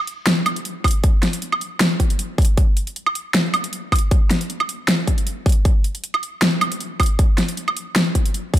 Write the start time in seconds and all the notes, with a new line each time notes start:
0.07 closed hi-hat
0.27 snare, closed hi-hat
0.46 closed hi-hat, high woodblock
0.56 closed hi-hat
0.65 closed hi-hat
0.84 kick, closed hi-hat, open hi-hat, high woodblock
0.91 closed hi-hat
1.04 kick, closed hi-hat
1.23 snare, closed hi-hat
1.33 closed hi-hat
1.42 closed hi-hat
1.52 high woodblock
1.61 closed hi-hat
1.80 snare, closed hi-hat
2.00 kick, closed hi-hat
2.10 closed hi-hat
2.19 closed hi-hat
2.38 kick, closed hi-hat, open hi-hat
2.45 closed hi-hat
2.57 kick, closed hi-hat
2.77 closed hi-hat
2.87 closed hi-hat
2.96 closed hi-hat
3.06 high woodblock
3.15 closed hi-hat
3.34 snare, closed hi-hat
3.54 closed hi-hat, high woodblock
3.64 closed hi-hat
3.73 closed hi-hat
3.92 kick, closed hi-hat, open hi-hat, high woodblock
3.99 closed hi-hat
4.11 kick, closed hi-hat
4.31 snare, closed hi-hat
4.41 closed hi-hat
4.50 closed hi-hat
4.60 high woodblock
4.69 closed hi-hat
4.88 snare, closed hi-hat
5.08 kick, closed hi-hat
5.18 closed hi-hat
5.27 closed hi-hat
5.46 kick, closed hi-hat, open hi-hat
5.52 closed hi-hat
5.65 kick, closed hi-hat
5.84 closed hi-hat
5.95 closed hi-hat
6.04 closed hi-hat
6.14 high woodblock
6.23 closed hi-hat
6.42 snare, closed hi-hat
6.61 closed hi-hat, high woodblock
6.72 closed hi-hat
6.80 closed hi-hat
7.00 kick, closed hi-hat, open hi-hat, high woodblock
7.06 closed hi-hat
7.19 kick, closed hi-hat
7.38 snare, closed hi-hat
7.49 closed hi-hat
7.57 closed hi-hat
7.68 high woodblock
7.77 closed hi-hat
7.96 snare, closed hi-hat
8.15 kick, closed hi-hat
8.26 closed hi-hat
8.34 closed hi-hat
8.54 kick, open hi-hat